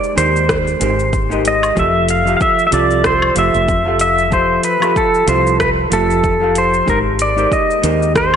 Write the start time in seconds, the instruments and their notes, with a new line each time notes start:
Already playing: hollow-body jazz guitar G#3 D#4 G4 A#4 C5, pedal steel guitar D5
0.04 cabasa
0.15 fretless electric bass D#2, hollow-body jazz guitar G#3 D#4 G4 A#4 C5, pedal steel guitar C5, closed hi-hat, cabasa
0.36 cabasa
0.49 kick, cross-stick, cabasa
0.67 cabasa
0.79 fretless electric bass G#1, hollow-body jazz guitar G#3 D#4 G4 A#4 C5, closed hi-hat, cabasa
0.99 cabasa
1.13 kick, cabasa
1.29 hollow-body jazz guitar G#3 D#4 G4 A#4 D#5, cabasa
1.45 pedal steel guitar D#5, closed hi-hat, cabasa
1.63 cabasa, low woodblock
1.75 fretless electric bass F1, hollow-body jazz guitar F3 F4 G4 A4 E5, kick, cabasa
1.79 pedal steel guitar E5
2.09 pedal steel guitar F5, closed hi-hat, cabasa
2.25 hollow-body jazz guitar F3 F4 G4 A4 E5, cabasa
2.37 pedal steel guitar F5, cabasa
2.41 pedal steel guitar E5, kick
2.59 cabasa
2.67 hollow-body jazz guitar F3, pedal steel guitar E5
2.72 fretless electric bass C2, hollow-body jazz guitar F4 G4 A4 E5, pedal steel guitar D5, closed hi-hat, cabasa
2.91 cabasa
3.04 pedal steel guitar C5, kick, cross-stick, cabasa
3.22 low woodblock
3.35 fretless electric bass F1, hollow-body jazz guitar F3 F4 G4 A4 E5, pedal steel guitar E5, closed hi-hat, cabasa
3.54 fretless electric bass F1, cabasa
3.68 kick, cabasa
3.85 hollow-body jazz guitar F3 F4 G4 A4 F5
3.99 pedal steel guitar E5, closed hi-hat, cabasa
4.18 cabasa
4.30 hollow-body jazz guitar F3 F4 G4 A4 E5, pedal steel guitar C5, kick, cabasa
4.63 pedal steel guitar B4, closed hi-hat, cabasa
4.80 hollow-body jazz guitar F3 F4 G4 A4 E5, cabasa, low woodblock
4.96 pedal steel guitar A4, kick, cabasa
5.14 cabasa
5.26 fretless electric bass C2, hollow-body jazz guitar F3 F4 G4 A4 E5, pedal steel guitar C5, closed hi-hat, cabasa
5.47 cabasa
5.60 pedal steel guitar B4, kick, cross-stick, cabasa
5.90 fretless electric bass F1, hollow-body jazz guitar F3 F4 G4 A4 E5, pedal steel guitar A4, closed hi-hat, cabasa
6.10 cabasa
6.24 kick, cabasa
6.40 hollow-body jazz guitar F3 F4 G4 A4 F5
6.55 pedal steel guitar C5, closed hi-hat, cabasa
6.74 cabasa
6.86 fretless electric bass G#1, hollow-body jazz guitar G#3 D#4 G4 A#4 C5, kick, cabasa
6.90 pedal steel guitar A#4
7.19 pedal steel guitar D5, closed hi-hat, cabasa
7.36 hollow-body jazz guitar G#3 D#4 G4 A#4 C5, cabasa
7.52 pedal steel guitar D#5, kick, cabasa
7.71 cabasa
7.82 fretless electric bass D#2, hollow-body jazz guitar G#3 D#4 G4 A#4 C5, closed hi-hat, cabasa
8.02 cabasa
8.15 pedal steel guitar C5, kick, cross-stick, cabasa